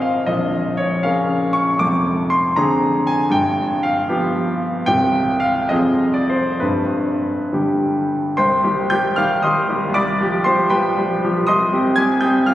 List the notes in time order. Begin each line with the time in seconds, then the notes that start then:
Already playing: G#1 G#2 D#3 C4 C5 D#5 F5 G5 G#5
0.02 F5
0.26 A#0 A#1 D#5
0.77 C#5
1.03 C#3 C#4 A#4 F5
1.53 C#6
1.79 F1 F2 D6
2.30 C6
2.56 D3 C4 G#4 A#5
3.07 G#5
3.29 G1 G2 G5
3.83 F5
4.09 F3 B3 G4
4.86 C1 C2 D#3 C4 G4 G5
5.40 F5
5.69 F1 F2 F3 C4 G#4 D#5
6.14 D5
6.29 C5
6.60 G1 G2 B4
7.53 D3 G3 G4
8.37 C2 C5 G5 C6
8.64 D#3 G3 G4
8.90 D#3 G3 G4 G5 G6
9.16 D#3 G3 G4 F5 F6
9.42 D#3 G3 G4 D#5 C6 D#6
9.69 D#3 G3 G4
9.89 C2
9.94 D5 B5 D6
10.21 F3 G3 G4
10.44 F3 G3 G4 C5 C6
10.70 F3 G3 G4 B4 G5 B5
10.97 F3 G3 G4
11.24 F3 G3 G4
11.47 C2 D#5 C6 D#6
11.72 G3 C4 G4
11.96 G3 C4 G4 G#5 G#6
12.21 G3 C4 G4 G5 D#6 G6
12.46 G3 C4 G4 F5 F6